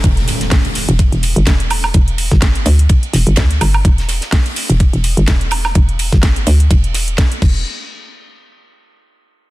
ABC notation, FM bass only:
X:1
M:4/4
L:1/16
Q:"Swing 16ths" 1/4=126
K:Em
V:1 name="FM bass" clef=bass
E,,,3 z4 E,,,2 E,,,2 G,,, E,,,4 | E,,,3 G,,,3 D,,2 z2 E,,, G,,, D,,2 G,,,2 | E,,,3 z4 E,,,2 E,,,2 G,,, E,,,4 | E,,,3 G,,,3 D,,2 E,,,4 z2 E,,,2 |
z16 |]